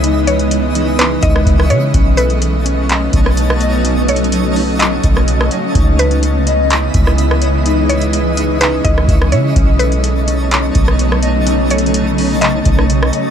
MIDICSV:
0, 0, Header, 1, 7, 480
1, 0, Start_track
1, 0, Tempo, 476190
1, 38, Time_signature, 4, 2, 24, 8
1, 13410, End_track
2, 0, Start_track
2, 0, Title_t, "Synth texture"
2, 0, Program_c, 0, 99
2, 0, Note_on_c, 0, 64, 84
2, 0, Note_on_c, 0, 75, 79
2, 37, Note_on_c, 0, 85, 94
2, 1919, Note_off_c, 0, 64, 0
2, 1920, Note_off_c, 0, 75, 0
2, 1938, Note_off_c, 0, 85, 0
2, 1957, Note_on_c, 0, 63, 83
2, 1957, Note_on_c, 0, 81, 96
2, 1958, Note_on_c, 0, 73, 79
2, 5759, Note_off_c, 0, 63, 0
2, 5759, Note_off_c, 0, 73, 0
2, 5759, Note_off_c, 0, 81, 0
2, 5798, Note_on_c, 0, 75, 78
2, 5799, Note_on_c, 0, 64, 81
2, 5799, Note_on_c, 0, 83, 93
2, 7699, Note_off_c, 0, 83, 0
2, 7718, Note_on_c, 0, 85, 92
2, 9600, Note_off_c, 0, 64, 0
2, 9600, Note_off_c, 0, 75, 0
2, 9619, Note_off_c, 0, 85, 0
2, 9639, Note_on_c, 0, 63, 86
2, 9639, Note_on_c, 0, 73, 78
2, 9639, Note_on_c, 0, 81, 96
2, 13410, Note_off_c, 0, 63, 0
2, 13410, Note_off_c, 0, 73, 0
2, 13410, Note_off_c, 0, 81, 0
2, 13410, End_track
3, 0, Start_track
3, 0, Title_t, "Synth pluck"
3, 0, Program_c, 1, 84
3, 275, Note_on_c, 1, 73, 77
3, 956, Note_off_c, 1, 73, 0
3, 997, Note_on_c, 1, 71, 93
3, 1225, Note_off_c, 1, 71, 0
3, 1235, Note_on_c, 1, 75, 80
3, 1688, Note_off_c, 1, 75, 0
3, 1716, Note_on_c, 1, 73, 80
3, 1945, Note_off_c, 1, 73, 0
3, 2190, Note_on_c, 1, 71, 96
3, 3834, Note_off_c, 1, 71, 0
3, 4122, Note_on_c, 1, 73, 79
3, 4799, Note_off_c, 1, 73, 0
3, 4832, Note_on_c, 1, 75, 82
3, 5755, Note_off_c, 1, 75, 0
3, 6041, Note_on_c, 1, 71, 92
3, 7679, Note_off_c, 1, 71, 0
3, 7957, Note_on_c, 1, 73, 76
3, 8637, Note_off_c, 1, 73, 0
3, 8677, Note_on_c, 1, 71, 93
3, 8905, Note_off_c, 1, 71, 0
3, 8915, Note_on_c, 1, 75, 77
3, 9368, Note_off_c, 1, 75, 0
3, 9396, Note_on_c, 1, 73, 78
3, 9625, Note_off_c, 1, 73, 0
3, 9872, Note_on_c, 1, 71, 94
3, 11514, Note_off_c, 1, 71, 0
3, 11804, Note_on_c, 1, 73, 78
3, 12480, Note_off_c, 1, 73, 0
3, 12512, Note_on_c, 1, 75, 82
3, 13410, Note_off_c, 1, 75, 0
3, 13410, End_track
4, 0, Start_track
4, 0, Title_t, "Clean electric guitar"
4, 0, Program_c, 2, 27
4, 0, Note_on_c, 2, 64, 70
4, 0, Note_on_c, 2, 73, 82
4, 0, Note_on_c, 2, 75, 94
4, 38, Note_on_c, 2, 63, 90
4, 275, Note_off_c, 2, 75, 0
4, 279, Note_on_c, 2, 71, 76
4, 520, Note_off_c, 2, 64, 0
4, 748, Note_off_c, 2, 63, 0
4, 760, Note_on_c, 2, 63, 93
4, 985, Note_off_c, 2, 63, 0
4, 997, Note_on_c, 2, 63, 89
4, 1236, Note_off_c, 2, 73, 0
4, 1719, Note_off_c, 2, 71, 0
4, 1719, Note_on_c, 2, 76, 82
4, 1957, Note_off_c, 2, 63, 0
4, 1957, Note_on_c, 2, 61, 89
4, 1958, Note_off_c, 2, 76, 0
4, 2195, Note_on_c, 2, 69, 80
4, 2662, Note_off_c, 2, 61, 0
4, 2674, Note_on_c, 2, 61, 100
4, 2907, Note_off_c, 2, 61, 0
4, 2919, Note_on_c, 2, 61, 77
4, 3637, Note_off_c, 2, 69, 0
4, 3639, Note_on_c, 2, 75, 84
4, 3862, Note_off_c, 2, 61, 0
4, 3874, Note_on_c, 2, 61, 89
4, 4117, Note_on_c, 2, 69, 79
4, 4589, Note_off_c, 2, 61, 0
4, 4601, Note_on_c, 2, 61, 91
4, 4826, Note_off_c, 2, 61, 0
4, 4838, Note_on_c, 2, 61, 75
4, 5078, Note_off_c, 2, 75, 0
4, 5558, Note_off_c, 2, 69, 0
4, 5559, Note_on_c, 2, 75, 82
4, 5794, Note_off_c, 2, 61, 0
4, 5798, Note_off_c, 2, 75, 0
4, 5798, Note_on_c, 2, 63, 84
4, 6040, Note_on_c, 2, 71, 86
4, 6521, Note_on_c, 2, 75, 95
4, 6762, Note_on_c, 2, 64, 71
4, 7238, Note_off_c, 2, 63, 0
4, 7472, Note_off_c, 2, 71, 0
4, 7476, Note_on_c, 2, 73, 82
4, 7719, Note_on_c, 2, 63, 96
4, 7956, Note_off_c, 2, 75, 0
4, 7960, Note_on_c, 2, 71, 72
4, 8200, Note_off_c, 2, 64, 0
4, 8429, Note_off_c, 2, 63, 0
4, 8441, Note_on_c, 2, 63, 89
4, 8665, Note_off_c, 2, 63, 0
4, 8677, Note_on_c, 2, 63, 84
4, 8917, Note_off_c, 2, 73, 0
4, 9395, Note_off_c, 2, 71, 0
4, 9400, Note_on_c, 2, 76, 81
4, 9638, Note_off_c, 2, 63, 0
4, 9638, Note_on_c, 2, 61, 86
4, 9639, Note_off_c, 2, 76, 0
4, 9875, Note_on_c, 2, 69, 80
4, 10341, Note_off_c, 2, 61, 0
4, 10353, Note_on_c, 2, 61, 96
4, 10588, Note_off_c, 2, 61, 0
4, 10600, Note_on_c, 2, 61, 79
4, 11317, Note_off_c, 2, 69, 0
4, 11320, Note_on_c, 2, 75, 87
4, 11544, Note_off_c, 2, 61, 0
4, 11556, Note_on_c, 2, 61, 95
4, 11798, Note_on_c, 2, 69, 84
4, 12270, Note_off_c, 2, 61, 0
4, 12282, Note_on_c, 2, 61, 94
4, 12506, Note_off_c, 2, 61, 0
4, 12759, Note_off_c, 2, 75, 0
4, 13238, Note_off_c, 2, 69, 0
4, 13239, Note_on_c, 2, 75, 79
4, 13410, Note_off_c, 2, 75, 0
4, 13410, End_track
5, 0, Start_track
5, 0, Title_t, "Ambient pad"
5, 0, Program_c, 3, 92
5, 0, Note_on_c, 3, 49, 77
5, 0, Note_on_c, 3, 52, 70
5, 0, Note_on_c, 3, 56, 69
5, 0, Note_on_c, 3, 59, 72
5, 0, Note_on_c, 3, 75, 88
5, 1920, Note_off_c, 3, 52, 0
5, 1920, Note_off_c, 3, 56, 0
5, 1920, Note_off_c, 3, 59, 0
5, 1920, Note_off_c, 3, 75, 0
5, 1957, Note_on_c, 3, 54, 74
5, 1957, Note_on_c, 3, 57, 71
5, 1957, Note_on_c, 3, 59, 75
5, 1957, Note_on_c, 3, 75, 86
5, 3858, Note_off_c, 3, 59, 0
5, 3876, Note_on_c, 3, 61, 73
5, 5759, Note_off_c, 3, 54, 0
5, 5759, Note_off_c, 3, 57, 0
5, 5778, Note_off_c, 3, 61, 0
5, 5799, Note_on_c, 3, 59, 72
5, 5800, Note_on_c, 3, 52, 75
5, 5800, Note_on_c, 3, 56, 75
5, 7699, Note_off_c, 3, 59, 0
5, 7720, Note_on_c, 3, 61, 72
5, 9598, Note_off_c, 3, 49, 0
5, 9601, Note_off_c, 3, 52, 0
5, 9601, Note_off_c, 3, 56, 0
5, 9620, Note_off_c, 3, 61, 0
5, 9636, Note_on_c, 3, 54, 71
5, 9636, Note_on_c, 3, 59, 73
5, 9637, Note_on_c, 3, 49, 79
5, 9637, Note_on_c, 3, 57, 69
5, 11538, Note_off_c, 3, 59, 0
5, 11556, Note_on_c, 3, 61, 71
5, 13410, Note_off_c, 3, 49, 0
5, 13410, Note_off_c, 3, 54, 0
5, 13410, Note_off_c, 3, 57, 0
5, 13410, Note_off_c, 3, 61, 0
5, 13410, Note_off_c, 3, 75, 0
5, 13410, End_track
6, 0, Start_track
6, 0, Title_t, "808-style bass"
6, 0, Program_c, 4, 38
6, 0, Note_on_c, 4, 37, 103
6, 1199, Note_off_c, 4, 37, 0
6, 1240, Note_on_c, 4, 37, 105
6, 1470, Note_off_c, 4, 37, 0
6, 1476, Note_on_c, 4, 37, 108
6, 1717, Note_on_c, 4, 49, 103
6, 1732, Note_off_c, 4, 37, 0
6, 1946, Note_off_c, 4, 49, 0
6, 1958, Note_on_c, 4, 35, 115
6, 3118, Note_off_c, 4, 35, 0
6, 3161, Note_on_c, 4, 35, 107
6, 5039, Note_off_c, 4, 35, 0
6, 5081, Note_on_c, 4, 35, 108
6, 5540, Note_off_c, 4, 35, 0
6, 5799, Note_on_c, 4, 37, 115
6, 6958, Note_off_c, 4, 37, 0
6, 7001, Note_on_c, 4, 37, 108
6, 8879, Note_off_c, 4, 37, 0
6, 8921, Note_on_c, 4, 37, 104
6, 9150, Note_off_c, 4, 37, 0
6, 9156, Note_on_c, 4, 37, 110
6, 9399, Note_on_c, 4, 49, 104
6, 9414, Note_off_c, 4, 37, 0
6, 9626, Note_off_c, 4, 49, 0
6, 9639, Note_on_c, 4, 35, 116
6, 10798, Note_off_c, 4, 35, 0
6, 10841, Note_on_c, 4, 35, 104
6, 12719, Note_off_c, 4, 35, 0
6, 12760, Note_on_c, 4, 35, 106
6, 13220, Note_off_c, 4, 35, 0
6, 13410, End_track
7, 0, Start_track
7, 0, Title_t, "Drums"
7, 38, Note_on_c, 9, 42, 82
7, 138, Note_off_c, 9, 42, 0
7, 277, Note_on_c, 9, 42, 75
7, 378, Note_off_c, 9, 42, 0
7, 397, Note_on_c, 9, 42, 41
7, 498, Note_off_c, 9, 42, 0
7, 517, Note_on_c, 9, 42, 85
7, 618, Note_off_c, 9, 42, 0
7, 759, Note_on_c, 9, 42, 78
7, 860, Note_off_c, 9, 42, 0
7, 997, Note_on_c, 9, 42, 77
7, 1010, Note_on_c, 9, 39, 125
7, 1098, Note_off_c, 9, 42, 0
7, 1111, Note_off_c, 9, 39, 0
7, 1235, Note_on_c, 9, 42, 72
7, 1240, Note_on_c, 9, 36, 93
7, 1336, Note_off_c, 9, 42, 0
7, 1341, Note_off_c, 9, 36, 0
7, 1367, Note_on_c, 9, 37, 95
7, 1468, Note_off_c, 9, 37, 0
7, 1476, Note_on_c, 9, 36, 100
7, 1480, Note_on_c, 9, 42, 80
7, 1576, Note_off_c, 9, 36, 0
7, 1580, Note_off_c, 9, 42, 0
7, 1609, Note_on_c, 9, 37, 100
7, 1709, Note_off_c, 9, 37, 0
7, 1715, Note_on_c, 9, 42, 70
7, 1816, Note_off_c, 9, 42, 0
7, 1957, Note_on_c, 9, 42, 85
7, 1958, Note_on_c, 9, 36, 121
7, 2058, Note_off_c, 9, 42, 0
7, 2059, Note_off_c, 9, 36, 0
7, 2198, Note_on_c, 9, 42, 75
7, 2299, Note_off_c, 9, 42, 0
7, 2318, Note_on_c, 9, 42, 42
7, 2419, Note_off_c, 9, 42, 0
7, 2437, Note_on_c, 9, 42, 88
7, 2538, Note_off_c, 9, 42, 0
7, 2679, Note_on_c, 9, 42, 79
7, 2780, Note_off_c, 9, 42, 0
7, 2917, Note_on_c, 9, 42, 78
7, 2930, Note_on_c, 9, 39, 127
7, 3018, Note_off_c, 9, 42, 0
7, 3031, Note_off_c, 9, 39, 0
7, 3156, Note_on_c, 9, 42, 71
7, 3161, Note_on_c, 9, 36, 93
7, 3257, Note_off_c, 9, 42, 0
7, 3261, Note_off_c, 9, 36, 0
7, 3287, Note_on_c, 9, 37, 93
7, 3388, Note_off_c, 9, 37, 0
7, 3400, Note_on_c, 9, 42, 82
7, 3501, Note_off_c, 9, 42, 0
7, 3529, Note_on_c, 9, 37, 101
7, 3630, Note_off_c, 9, 37, 0
7, 3634, Note_on_c, 9, 42, 69
7, 3735, Note_off_c, 9, 42, 0
7, 3878, Note_on_c, 9, 42, 86
7, 3978, Note_off_c, 9, 42, 0
7, 4117, Note_on_c, 9, 42, 75
7, 4197, Note_off_c, 9, 42, 0
7, 4197, Note_on_c, 9, 42, 60
7, 4277, Note_off_c, 9, 42, 0
7, 4277, Note_on_c, 9, 42, 41
7, 4357, Note_off_c, 9, 42, 0
7, 4357, Note_on_c, 9, 42, 86
7, 4458, Note_off_c, 9, 42, 0
7, 4599, Note_on_c, 9, 46, 54
7, 4699, Note_off_c, 9, 46, 0
7, 4837, Note_on_c, 9, 42, 75
7, 4850, Note_on_c, 9, 39, 127
7, 4938, Note_off_c, 9, 42, 0
7, 4951, Note_off_c, 9, 39, 0
7, 5075, Note_on_c, 9, 42, 70
7, 5081, Note_on_c, 9, 36, 89
7, 5176, Note_off_c, 9, 42, 0
7, 5181, Note_off_c, 9, 36, 0
7, 5208, Note_on_c, 9, 37, 87
7, 5309, Note_off_c, 9, 37, 0
7, 5320, Note_on_c, 9, 42, 81
7, 5421, Note_off_c, 9, 42, 0
7, 5450, Note_on_c, 9, 37, 97
7, 5550, Note_off_c, 9, 37, 0
7, 5555, Note_on_c, 9, 42, 70
7, 5656, Note_off_c, 9, 42, 0
7, 5798, Note_on_c, 9, 42, 86
7, 5799, Note_on_c, 9, 36, 122
7, 5899, Note_off_c, 9, 42, 0
7, 5900, Note_off_c, 9, 36, 0
7, 6039, Note_on_c, 9, 42, 76
7, 6140, Note_off_c, 9, 42, 0
7, 6159, Note_on_c, 9, 42, 43
7, 6260, Note_off_c, 9, 42, 0
7, 6278, Note_on_c, 9, 42, 84
7, 6379, Note_off_c, 9, 42, 0
7, 6520, Note_on_c, 9, 42, 80
7, 6621, Note_off_c, 9, 42, 0
7, 6758, Note_on_c, 9, 42, 79
7, 6771, Note_on_c, 9, 39, 127
7, 6859, Note_off_c, 9, 42, 0
7, 6872, Note_off_c, 9, 39, 0
7, 6996, Note_on_c, 9, 42, 72
7, 7001, Note_on_c, 9, 36, 92
7, 7097, Note_off_c, 9, 42, 0
7, 7102, Note_off_c, 9, 36, 0
7, 7128, Note_on_c, 9, 37, 91
7, 7229, Note_off_c, 9, 37, 0
7, 7240, Note_on_c, 9, 42, 84
7, 7341, Note_off_c, 9, 42, 0
7, 7370, Note_on_c, 9, 37, 95
7, 7470, Note_off_c, 9, 37, 0
7, 7475, Note_on_c, 9, 42, 71
7, 7576, Note_off_c, 9, 42, 0
7, 7718, Note_on_c, 9, 42, 80
7, 7819, Note_off_c, 9, 42, 0
7, 7959, Note_on_c, 9, 42, 72
7, 8060, Note_off_c, 9, 42, 0
7, 8079, Note_on_c, 9, 42, 42
7, 8179, Note_off_c, 9, 42, 0
7, 8198, Note_on_c, 9, 42, 86
7, 8298, Note_off_c, 9, 42, 0
7, 8440, Note_on_c, 9, 42, 81
7, 8541, Note_off_c, 9, 42, 0
7, 8678, Note_on_c, 9, 42, 74
7, 8691, Note_on_c, 9, 39, 125
7, 8779, Note_off_c, 9, 42, 0
7, 8792, Note_off_c, 9, 39, 0
7, 8917, Note_on_c, 9, 42, 71
7, 8921, Note_on_c, 9, 36, 88
7, 9018, Note_off_c, 9, 42, 0
7, 9022, Note_off_c, 9, 36, 0
7, 9049, Note_on_c, 9, 37, 90
7, 9150, Note_off_c, 9, 37, 0
7, 9156, Note_on_c, 9, 36, 106
7, 9161, Note_on_c, 9, 42, 78
7, 9257, Note_off_c, 9, 36, 0
7, 9261, Note_off_c, 9, 42, 0
7, 9289, Note_on_c, 9, 37, 97
7, 9390, Note_off_c, 9, 37, 0
7, 9396, Note_on_c, 9, 42, 70
7, 9497, Note_off_c, 9, 42, 0
7, 9638, Note_on_c, 9, 42, 80
7, 9639, Note_on_c, 9, 36, 127
7, 9739, Note_off_c, 9, 36, 0
7, 9739, Note_off_c, 9, 42, 0
7, 9879, Note_on_c, 9, 42, 72
7, 9979, Note_off_c, 9, 42, 0
7, 9999, Note_on_c, 9, 42, 42
7, 10099, Note_off_c, 9, 42, 0
7, 10118, Note_on_c, 9, 42, 86
7, 10219, Note_off_c, 9, 42, 0
7, 10360, Note_on_c, 9, 42, 83
7, 10461, Note_off_c, 9, 42, 0
7, 10597, Note_on_c, 9, 42, 80
7, 10611, Note_on_c, 9, 39, 125
7, 10698, Note_off_c, 9, 42, 0
7, 10711, Note_off_c, 9, 39, 0
7, 10836, Note_on_c, 9, 42, 68
7, 10841, Note_on_c, 9, 36, 91
7, 10936, Note_off_c, 9, 42, 0
7, 10941, Note_off_c, 9, 36, 0
7, 10967, Note_on_c, 9, 37, 89
7, 11068, Note_off_c, 9, 37, 0
7, 11080, Note_on_c, 9, 42, 78
7, 11181, Note_off_c, 9, 42, 0
7, 11210, Note_on_c, 9, 37, 95
7, 11310, Note_off_c, 9, 37, 0
7, 11315, Note_on_c, 9, 42, 70
7, 11416, Note_off_c, 9, 42, 0
7, 11558, Note_on_c, 9, 42, 86
7, 11659, Note_off_c, 9, 42, 0
7, 11798, Note_on_c, 9, 42, 76
7, 11878, Note_off_c, 9, 42, 0
7, 11878, Note_on_c, 9, 42, 59
7, 11958, Note_off_c, 9, 42, 0
7, 11958, Note_on_c, 9, 42, 45
7, 12037, Note_off_c, 9, 42, 0
7, 12037, Note_on_c, 9, 42, 83
7, 12138, Note_off_c, 9, 42, 0
7, 12280, Note_on_c, 9, 46, 59
7, 12381, Note_off_c, 9, 46, 0
7, 12518, Note_on_c, 9, 42, 77
7, 12531, Note_on_c, 9, 39, 127
7, 12618, Note_off_c, 9, 42, 0
7, 12632, Note_off_c, 9, 39, 0
7, 12756, Note_on_c, 9, 42, 72
7, 12761, Note_on_c, 9, 36, 90
7, 12857, Note_off_c, 9, 42, 0
7, 12861, Note_off_c, 9, 36, 0
7, 12888, Note_on_c, 9, 37, 92
7, 12989, Note_off_c, 9, 37, 0
7, 13000, Note_on_c, 9, 42, 80
7, 13101, Note_off_c, 9, 42, 0
7, 13130, Note_on_c, 9, 37, 99
7, 13231, Note_off_c, 9, 37, 0
7, 13236, Note_on_c, 9, 42, 71
7, 13337, Note_off_c, 9, 42, 0
7, 13410, End_track
0, 0, End_of_file